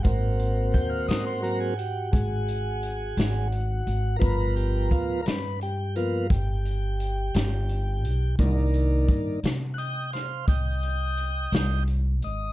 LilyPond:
<<
  \new Staff \with { instrumentName = "Tonewheel organ" } { \time 12/8 \key c \minor \tempo 4. = 57 r4 g''16 f''16 ees''16 c''16 bes'16 aes'16 g'8 aes'2 r4 | <ais' b'>8 g'8 f'8 <ais' b'>8 g'8 f'8 g'2. | r2 <ees'' fis'' g''>8 <c'' f''>8 <ees'' g''>2 r8 ees''8 | }
  \new Staff \with { instrumentName = "Tonewheel organ" } { \time 12/8 \key c \minor <bes c' ges'>2 <ges bes c'>8 r2. r8 | <f b ais'>4. r4 <f ais b>8 r2. | <ees bes d'>4. r1 r8 | }
  \new Staff \with { instrumentName = "Upright bass" } { \clef bass \time 12/8 \key c \minor aes,,4 ees,8 aes,4. aes,,4. aes,,4 aes,,8 | g,,4 d,8 g,4. g,,4. g,,4 b,,8 | c,4 g,8 c4. c,4. c,4 aes,,8 | }
  \new DrumStaff \with { instrumentName = "Drums" } \drummode { \time 12/8 <hh bd>8 hh8 <hh bd>8 <hh sn>8 hh8 hh8 <hh bd>8 hh8 hh8 <hh sn>8 hh8 hh8 | <hh bd>8 hh8 <hh bd>8 <hh sn>8 hh8 hh8 <hh bd>8 hh8 hh8 <hh sn>8 hh8 hh8 | <hh bd>8 hh8 <hh bd>8 <hh sn>8 hh8 <hh sn>8 <hh bd>8 hh8 hh8 <hh sn>8 hh8 hh8 | }
>>